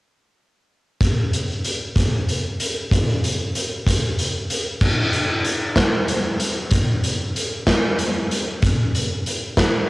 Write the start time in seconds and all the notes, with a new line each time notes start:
1.01 kick, closed hi-hat
1.33 closed hi-hat
1.64 closed hi-hat
1.96 kick, closed hi-hat
2.28 closed hi-hat
2.60 closed hi-hat
2.91 kick, closed hi-hat
3.24 closed hi-hat
3.55 closed hi-hat
3.86 kick, closed hi-hat
4.18 closed hi-hat
4.50 closed hi-hat
4.81 kick, crash
5.13 closed hi-hat
5.44 closed hi-hat
5.76 kick, snare, closed hi-hat
6.08 closed hi-hat
6.40 closed hi-hat
6.70 kick, closed hi-hat
7.03 closed hi-hat
7.36 closed hi-hat
7.67 kick, snare, closed hi-hat
7.99 closed hi-hat
8.31 closed hi-hat
8.62 kick, closed hi-hat
8.95 closed hi-hat
9.26 closed hi-hat
9.57 kick, snare, closed hi-hat